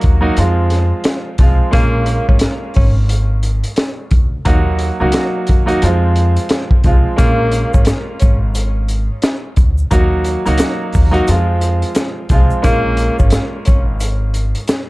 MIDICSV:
0, 0, Header, 1, 5, 480
1, 0, Start_track
1, 0, Key_signature, -5, "minor"
1, 0, Tempo, 681818
1, 1219, Time_signature, 4, 2, 24, 8
1, 10487, End_track
2, 0, Start_track
2, 0, Title_t, "Tenor saxophone"
2, 0, Program_c, 0, 66
2, 1218, Note_on_c, 0, 58, 120
2, 1581, Note_off_c, 0, 58, 0
2, 1607, Note_on_c, 0, 61, 76
2, 1691, Note_off_c, 0, 61, 0
2, 1936, Note_on_c, 0, 61, 81
2, 2069, Note_off_c, 0, 61, 0
2, 5055, Note_on_c, 0, 58, 118
2, 5420, Note_off_c, 0, 58, 0
2, 5443, Note_on_c, 0, 61, 81
2, 5529, Note_off_c, 0, 61, 0
2, 5769, Note_on_c, 0, 61, 81
2, 5905, Note_off_c, 0, 61, 0
2, 8900, Note_on_c, 0, 58, 125
2, 9263, Note_off_c, 0, 58, 0
2, 9287, Note_on_c, 0, 61, 79
2, 9371, Note_off_c, 0, 61, 0
2, 9616, Note_on_c, 0, 61, 81
2, 9749, Note_off_c, 0, 61, 0
2, 10487, End_track
3, 0, Start_track
3, 0, Title_t, "Grand piano"
3, 0, Program_c, 1, 0
3, 0, Note_on_c, 1, 54, 94
3, 0, Note_on_c, 1, 58, 87
3, 0, Note_on_c, 1, 63, 87
3, 0, Note_on_c, 1, 66, 97
3, 116, Note_off_c, 1, 54, 0
3, 117, Note_off_c, 1, 58, 0
3, 119, Note_off_c, 1, 63, 0
3, 121, Note_off_c, 1, 66, 0
3, 144, Note_on_c, 1, 54, 92
3, 148, Note_on_c, 1, 58, 88
3, 152, Note_on_c, 1, 63, 92
3, 155, Note_on_c, 1, 66, 108
3, 249, Note_off_c, 1, 54, 0
3, 250, Note_off_c, 1, 58, 0
3, 252, Note_off_c, 1, 63, 0
3, 254, Note_off_c, 1, 66, 0
3, 265, Note_on_c, 1, 53, 92
3, 268, Note_on_c, 1, 56, 82
3, 271, Note_on_c, 1, 60, 83
3, 276, Note_on_c, 1, 65, 96
3, 937, Note_off_c, 1, 53, 0
3, 939, Note_off_c, 1, 56, 0
3, 940, Note_off_c, 1, 60, 0
3, 942, Note_off_c, 1, 65, 0
3, 984, Note_on_c, 1, 53, 80
3, 988, Note_on_c, 1, 56, 75
3, 991, Note_on_c, 1, 60, 75
3, 995, Note_on_c, 1, 65, 91
3, 1193, Note_off_c, 1, 56, 0
3, 1204, Note_on_c, 1, 56, 87
3, 1205, Note_off_c, 1, 65, 0
3, 1207, Note_off_c, 1, 53, 0
3, 1208, Note_on_c, 1, 58, 97
3, 1210, Note_off_c, 1, 60, 0
3, 1211, Note_on_c, 1, 61, 86
3, 1215, Note_on_c, 1, 65, 106
3, 2997, Note_off_c, 1, 56, 0
3, 2998, Note_off_c, 1, 58, 0
3, 3000, Note_off_c, 1, 61, 0
3, 3002, Note_off_c, 1, 65, 0
3, 3132, Note_on_c, 1, 54, 94
3, 3136, Note_on_c, 1, 58, 85
3, 3139, Note_on_c, 1, 63, 82
3, 3143, Note_on_c, 1, 66, 101
3, 3487, Note_off_c, 1, 54, 0
3, 3488, Note_off_c, 1, 58, 0
3, 3490, Note_off_c, 1, 63, 0
3, 3492, Note_off_c, 1, 66, 0
3, 3520, Note_on_c, 1, 54, 92
3, 3523, Note_on_c, 1, 58, 85
3, 3527, Note_on_c, 1, 63, 86
3, 3531, Note_on_c, 1, 66, 100
3, 3956, Note_off_c, 1, 54, 0
3, 3957, Note_off_c, 1, 58, 0
3, 3959, Note_off_c, 1, 63, 0
3, 3961, Note_off_c, 1, 66, 0
3, 3983, Note_on_c, 1, 54, 88
3, 3987, Note_on_c, 1, 58, 85
3, 3991, Note_on_c, 1, 63, 98
3, 3995, Note_on_c, 1, 66, 109
3, 4088, Note_off_c, 1, 54, 0
3, 4090, Note_off_c, 1, 58, 0
3, 4092, Note_off_c, 1, 63, 0
3, 4094, Note_off_c, 1, 66, 0
3, 4102, Note_on_c, 1, 53, 92
3, 4107, Note_on_c, 1, 56, 84
3, 4110, Note_on_c, 1, 60, 82
3, 4114, Note_on_c, 1, 65, 95
3, 4776, Note_off_c, 1, 53, 0
3, 4778, Note_off_c, 1, 56, 0
3, 4779, Note_off_c, 1, 60, 0
3, 4781, Note_off_c, 1, 65, 0
3, 4822, Note_on_c, 1, 53, 81
3, 4826, Note_on_c, 1, 56, 69
3, 4830, Note_on_c, 1, 60, 75
3, 4833, Note_on_c, 1, 65, 89
3, 5032, Note_off_c, 1, 56, 0
3, 5043, Note_off_c, 1, 65, 0
3, 5043, Note_on_c, 1, 56, 88
3, 5046, Note_off_c, 1, 53, 0
3, 5047, Note_on_c, 1, 58, 97
3, 5049, Note_off_c, 1, 60, 0
3, 5051, Note_on_c, 1, 61, 87
3, 5054, Note_on_c, 1, 65, 105
3, 6836, Note_off_c, 1, 56, 0
3, 6838, Note_off_c, 1, 58, 0
3, 6840, Note_off_c, 1, 61, 0
3, 6841, Note_off_c, 1, 65, 0
3, 6975, Note_on_c, 1, 54, 94
3, 6978, Note_on_c, 1, 58, 88
3, 6982, Note_on_c, 1, 63, 84
3, 6986, Note_on_c, 1, 66, 99
3, 7328, Note_off_c, 1, 54, 0
3, 7330, Note_off_c, 1, 58, 0
3, 7332, Note_off_c, 1, 63, 0
3, 7334, Note_off_c, 1, 66, 0
3, 7361, Note_on_c, 1, 54, 92
3, 7364, Note_on_c, 1, 58, 84
3, 7368, Note_on_c, 1, 63, 86
3, 7372, Note_on_c, 1, 66, 100
3, 7796, Note_off_c, 1, 54, 0
3, 7798, Note_off_c, 1, 58, 0
3, 7800, Note_off_c, 1, 63, 0
3, 7802, Note_off_c, 1, 66, 0
3, 7824, Note_on_c, 1, 54, 94
3, 7829, Note_on_c, 1, 58, 88
3, 7832, Note_on_c, 1, 63, 97
3, 7835, Note_on_c, 1, 66, 107
3, 7929, Note_off_c, 1, 54, 0
3, 7931, Note_off_c, 1, 58, 0
3, 7932, Note_off_c, 1, 63, 0
3, 7934, Note_off_c, 1, 66, 0
3, 7944, Note_on_c, 1, 53, 92
3, 7947, Note_on_c, 1, 56, 84
3, 7952, Note_on_c, 1, 60, 79
3, 7955, Note_on_c, 1, 65, 94
3, 8617, Note_off_c, 1, 53, 0
3, 8618, Note_off_c, 1, 56, 0
3, 8620, Note_off_c, 1, 60, 0
3, 8622, Note_off_c, 1, 65, 0
3, 8665, Note_on_c, 1, 53, 84
3, 8668, Note_on_c, 1, 56, 70
3, 8671, Note_on_c, 1, 60, 74
3, 8675, Note_on_c, 1, 65, 92
3, 8875, Note_off_c, 1, 56, 0
3, 8886, Note_off_c, 1, 65, 0
3, 8886, Note_on_c, 1, 56, 92
3, 8887, Note_off_c, 1, 53, 0
3, 8889, Note_on_c, 1, 58, 98
3, 8890, Note_off_c, 1, 60, 0
3, 8892, Note_on_c, 1, 61, 86
3, 8896, Note_on_c, 1, 65, 109
3, 10487, Note_off_c, 1, 56, 0
3, 10487, Note_off_c, 1, 58, 0
3, 10487, Note_off_c, 1, 61, 0
3, 10487, Note_off_c, 1, 65, 0
3, 10487, End_track
4, 0, Start_track
4, 0, Title_t, "Upright bass"
4, 0, Program_c, 2, 32
4, 30, Note_on_c, 2, 39, 92
4, 214, Note_off_c, 2, 39, 0
4, 264, Note_on_c, 2, 41, 110
4, 639, Note_off_c, 2, 41, 0
4, 980, Note_on_c, 2, 36, 93
4, 1094, Note_off_c, 2, 36, 0
4, 1222, Note_on_c, 2, 34, 112
4, 1525, Note_off_c, 2, 34, 0
4, 1613, Note_on_c, 2, 32, 96
4, 1684, Note_off_c, 2, 32, 0
4, 1949, Note_on_c, 2, 32, 102
4, 2542, Note_off_c, 2, 32, 0
4, 2899, Note_on_c, 2, 38, 96
4, 3087, Note_off_c, 2, 38, 0
4, 3142, Note_on_c, 2, 39, 114
4, 3444, Note_off_c, 2, 39, 0
4, 3527, Note_on_c, 2, 37, 96
4, 3600, Note_off_c, 2, 37, 0
4, 3869, Note_on_c, 2, 39, 94
4, 4054, Note_off_c, 2, 39, 0
4, 4101, Note_on_c, 2, 41, 112
4, 4478, Note_off_c, 2, 41, 0
4, 4820, Note_on_c, 2, 36, 90
4, 4935, Note_off_c, 2, 36, 0
4, 5063, Note_on_c, 2, 34, 111
4, 5365, Note_off_c, 2, 34, 0
4, 5453, Note_on_c, 2, 32, 94
4, 5524, Note_off_c, 2, 32, 0
4, 5790, Note_on_c, 2, 32, 99
4, 6382, Note_off_c, 2, 32, 0
4, 6741, Note_on_c, 2, 38, 93
4, 6929, Note_off_c, 2, 38, 0
4, 6983, Note_on_c, 2, 39, 109
4, 7285, Note_off_c, 2, 39, 0
4, 7369, Note_on_c, 2, 37, 93
4, 7441, Note_off_c, 2, 37, 0
4, 7711, Note_on_c, 2, 39, 98
4, 7895, Note_off_c, 2, 39, 0
4, 7943, Note_on_c, 2, 41, 111
4, 8319, Note_off_c, 2, 41, 0
4, 8660, Note_on_c, 2, 36, 94
4, 8775, Note_off_c, 2, 36, 0
4, 8903, Note_on_c, 2, 34, 108
4, 9205, Note_off_c, 2, 34, 0
4, 9294, Note_on_c, 2, 32, 99
4, 9364, Note_off_c, 2, 32, 0
4, 9630, Note_on_c, 2, 32, 99
4, 10222, Note_off_c, 2, 32, 0
4, 10487, End_track
5, 0, Start_track
5, 0, Title_t, "Drums"
5, 10, Note_on_c, 9, 42, 73
5, 28, Note_on_c, 9, 36, 94
5, 80, Note_off_c, 9, 42, 0
5, 98, Note_off_c, 9, 36, 0
5, 258, Note_on_c, 9, 42, 94
5, 328, Note_off_c, 9, 42, 0
5, 494, Note_on_c, 9, 42, 70
5, 503, Note_on_c, 9, 38, 36
5, 565, Note_off_c, 9, 42, 0
5, 573, Note_off_c, 9, 38, 0
5, 730, Note_on_c, 9, 42, 95
5, 741, Note_on_c, 9, 38, 121
5, 801, Note_off_c, 9, 42, 0
5, 811, Note_off_c, 9, 38, 0
5, 972, Note_on_c, 9, 42, 64
5, 978, Note_on_c, 9, 36, 98
5, 1043, Note_off_c, 9, 42, 0
5, 1048, Note_off_c, 9, 36, 0
5, 1216, Note_on_c, 9, 42, 98
5, 1221, Note_on_c, 9, 36, 116
5, 1287, Note_off_c, 9, 42, 0
5, 1291, Note_off_c, 9, 36, 0
5, 1450, Note_on_c, 9, 42, 82
5, 1521, Note_off_c, 9, 42, 0
5, 1611, Note_on_c, 9, 36, 100
5, 1681, Note_off_c, 9, 36, 0
5, 1684, Note_on_c, 9, 42, 121
5, 1700, Note_on_c, 9, 38, 127
5, 1754, Note_off_c, 9, 42, 0
5, 1770, Note_off_c, 9, 38, 0
5, 1928, Note_on_c, 9, 46, 52
5, 1947, Note_on_c, 9, 36, 98
5, 1999, Note_off_c, 9, 46, 0
5, 2017, Note_off_c, 9, 36, 0
5, 2176, Note_on_c, 9, 42, 89
5, 2247, Note_off_c, 9, 42, 0
5, 2414, Note_on_c, 9, 42, 69
5, 2484, Note_off_c, 9, 42, 0
5, 2560, Note_on_c, 9, 42, 56
5, 2630, Note_off_c, 9, 42, 0
5, 2649, Note_on_c, 9, 42, 93
5, 2659, Note_on_c, 9, 38, 127
5, 2719, Note_off_c, 9, 42, 0
5, 2730, Note_off_c, 9, 38, 0
5, 2891, Note_on_c, 9, 42, 65
5, 2897, Note_on_c, 9, 36, 103
5, 2961, Note_off_c, 9, 42, 0
5, 2967, Note_off_c, 9, 36, 0
5, 3135, Note_on_c, 9, 42, 100
5, 3140, Note_on_c, 9, 36, 117
5, 3206, Note_off_c, 9, 42, 0
5, 3210, Note_off_c, 9, 36, 0
5, 3370, Note_on_c, 9, 42, 83
5, 3440, Note_off_c, 9, 42, 0
5, 3604, Note_on_c, 9, 42, 122
5, 3620, Note_on_c, 9, 38, 126
5, 3675, Note_off_c, 9, 42, 0
5, 3691, Note_off_c, 9, 38, 0
5, 3849, Note_on_c, 9, 42, 71
5, 3867, Note_on_c, 9, 36, 94
5, 3920, Note_off_c, 9, 42, 0
5, 3938, Note_off_c, 9, 36, 0
5, 4001, Note_on_c, 9, 42, 53
5, 4071, Note_off_c, 9, 42, 0
5, 4097, Note_on_c, 9, 42, 90
5, 4167, Note_off_c, 9, 42, 0
5, 4335, Note_on_c, 9, 42, 71
5, 4405, Note_off_c, 9, 42, 0
5, 4481, Note_on_c, 9, 42, 59
5, 4552, Note_off_c, 9, 42, 0
5, 4570, Note_on_c, 9, 42, 96
5, 4581, Note_on_c, 9, 38, 122
5, 4641, Note_off_c, 9, 42, 0
5, 4651, Note_off_c, 9, 38, 0
5, 4722, Note_on_c, 9, 36, 98
5, 4792, Note_off_c, 9, 36, 0
5, 4813, Note_on_c, 9, 42, 63
5, 4818, Note_on_c, 9, 36, 101
5, 4883, Note_off_c, 9, 42, 0
5, 4889, Note_off_c, 9, 36, 0
5, 5057, Note_on_c, 9, 42, 100
5, 5061, Note_on_c, 9, 36, 117
5, 5061, Note_on_c, 9, 82, 70
5, 5127, Note_off_c, 9, 42, 0
5, 5131, Note_off_c, 9, 36, 0
5, 5131, Note_off_c, 9, 82, 0
5, 5291, Note_on_c, 9, 42, 84
5, 5300, Note_on_c, 9, 82, 57
5, 5361, Note_off_c, 9, 42, 0
5, 5370, Note_off_c, 9, 82, 0
5, 5447, Note_on_c, 9, 82, 51
5, 5451, Note_on_c, 9, 36, 102
5, 5517, Note_off_c, 9, 82, 0
5, 5522, Note_off_c, 9, 36, 0
5, 5525, Note_on_c, 9, 42, 121
5, 5538, Note_on_c, 9, 82, 75
5, 5541, Note_on_c, 9, 38, 125
5, 5595, Note_off_c, 9, 42, 0
5, 5609, Note_off_c, 9, 82, 0
5, 5611, Note_off_c, 9, 38, 0
5, 5770, Note_on_c, 9, 42, 73
5, 5782, Note_on_c, 9, 82, 54
5, 5788, Note_on_c, 9, 36, 96
5, 5840, Note_off_c, 9, 42, 0
5, 5853, Note_off_c, 9, 82, 0
5, 5858, Note_off_c, 9, 36, 0
5, 6018, Note_on_c, 9, 42, 91
5, 6020, Note_on_c, 9, 82, 75
5, 6089, Note_off_c, 9, 42, 0
5, 6091, Note_off_c, 9, 82, 0
5, 6255, Note_on_c, 9, 42, 69
5, 6258, Note_on_c, 9, 82, 54
5, 6325, Note_off_c, 9, 42, 0
5, 6329, Note_off_c, 9, 82, 0
5, 6491, Note_on_c, 9, 42, 94
5, 6496, Note_on_c, 9, 82, 73
5, 6502, Note_on_c, 9, 38, 120
5, 6562, Note_off_c, 9, 42, 0
5, 6567, Note_off_c, 9, 82, 0
5, 6572, Note_off_c, 9, 38, 0
5, 6733, Note_on_c, 9, 42, 63
5, 6739, Note_on_c, 9, 36, 100
5, 6739, Note_on_c, 9, 82, 54
5, 6803, Note_off_c, 9, 42, 0
5, 6809, Note_off_c, 9, 36, 0
5, 6809, Note_off_c, 9, 82, 0
5, 6884, Note_on_c, 9, 82, 54
5, 6954, Note_off_c, 9, 82, 0
5, 6977, Note_on_c, 9, 42, 102
5, 6981, Note_on_c, 9, 36, 112
5, 6982, Note_on_c, 9, 82, 68
5, 7048, Note_off_c, 9, 42, 0
5, 7052, Note_off_c, 9, 36, 0
5, 7052, Note_off_c, 9, 82, 0
5, 7212, Note_on_c, 9, 42, 82
5, 7220, Note_on_c, 9, 82, 54
5, 7283, Note_off_c, 9, 42, 0
5, 7291, Note_off_c, 9, 82, 0
5, 7366, Note_on_c, 9, 42, 60
5, 7366, Note_on_c, 9, 82, 52
5, 7436, Note_off_c, 9, 82, 0
5, 7437, Note_off_c, 9, 42, 0
5, 7446, Note_on_c, 9, 42, 121
5, 7457, Note_on_c, 9, 82, 75
5, 7462, Note_on_c, 9, 38, 123
5, 7516, Note_off_c, 9, 42, 0
5, 7528, Note_off_c, 9, 82, 0
5, 7532, Note_off_c, 9, 38, 0
5, 7691, Note_on_c, 9, 46, 52
5, 7702, Note_on_c, 9, 82, 53
5, 7709, Note_on_c, 9, 36, 96
5, 7762, Note_off_c, 9, 46, 0
5, 7772, Note_off_c, 9, 82, 0
5, 7779, Note_off_c, 9, 36, 0
5, 7843, Note_on_c, 9, 42, 53
5, 7914, Note_off_c, 9, 42, 0
5, 7939, Note_on_c, 9, 42, 95
5, 7939, Note_on_c, 9, 82, 74
5, 8010, Note_off_c, 9, 42, 0
5, 8010, Note_off_c, 9, 82, 0
5, 8176, Note_on_c, 9, 42, 71
5, 8179, Note_on_c, 9, 82, 51
5, 8246, Note_off_c, 9, 42, 0
5, 8249, Note_off_c, 9, 82, 0
5, 8323, Note_on_c, 9, 42, 57
5, 8393, Note_off_c, 9, 42, 0
5, 8411, Note_on_c, 9, 42, 95
5, 8415, Note_on_c, 9, 82, 75
5, 8422, Note_on_c, 9, 38, 127
5, 8482, Note_off_c, 9, 42, 0
5, 8486, Note_off_c, 9, 82, 0
5, 8492, Note_off_c, 9, 38, 0
5, 8654, Note_on_c, 9, 42, 63
5, 8659, Note_on_c, 9, 36, 100
5, 8659, Note_on_c, 9, 82, 54
5, 8724, Note_off_c, 9, 42, 0
5, 8729, Note_off_c, 9, 36, 0
5, 8729, Note_off_c, 9, 82, 0
5, 8803, Note_on_c, 9, 82, 52
5, 8873, Note_off_c, 9, 82, 0
5, 8897, Note_on_c, 9, 42, 100
5, 8901, Note_on_c, 9, 82, 71
5, 8902, Note_on_c, 9, 36, 115
5, 8968, Note_off_c, 9, 42, 0
5, 8971, Note_off_c, 9, 82, 0
5, 8972, Note_off_c, 9, 36, 0
5, 9131, Note_on_c, 9, 42, 83
5, 9139, Note_on_c, 9, 82, 55
5, 9201, Note_off_c, 9, 42, 0
5, 9210, Note_off_c, 9, 82, 0
5, 9286, Note_on_c, 9, 82, 52
5, 9292, Note_on_c, 9, 36, 102
5, 9357, Note_off_c, 9, 82, 0
5, 9362, Note_off_c, 9, 36, 0
5, 9366, Note_on_c, 9, 42, 121
5, 9378, Note_on_c, 9, 82, 73
5, 9382, Note_on_c, 9, 38, 127
5, 9436, Note_off_c, 9, 42, 0
5, 9448, Note_off_c, 9, 82, 0
5, 9452, Note_off_c, 9, 38, 0
5, 9611, Note_on_c, 9, 42, 72
5, 9623, Note_on_c, 9, 82, 53
5, 9629, Note_on_c, 9, 36, 98
5, 9681, Note_off_c, 9, 42, 0
5, 9693, Note_off_c, 9, 82, 0
5, 9699, Note_off_c, 9, 36, 0
5, 9859, Note_on_c, 9, 42, 91
5, 9860, Note_on_c, 9, 82, 76
5, 9929, Note_off_c, 9, 42, 0
5, 9930, Note_off_c, 9, 82, 0
5, 10095, Note_on_c, 9, 42, 68
5, 10099, Note_on_c, 9, 82, 51
5, 10165, Note_off_c, 9, 42, 0
5, 10169, Note_off_c, 9, 82, 0
5, 10242, Note_on_c, 9, 42, 57
5, 10313, Note_off_c, 9, 42, 0
5, 10332, Note_on_c, 9, 42, 91
5, 10336, Note_on_c, 9, 82, 75
5, 10342, Note_on_c, 9, 38, 127
5, 10402, Note_off_c, 9, 42, 0
5, 10406, Note_off_c, 9, 82, 0
5, 10413, Note_off_c, 9, 38, 0
5, 10487, End_track
0, 0, End_of_file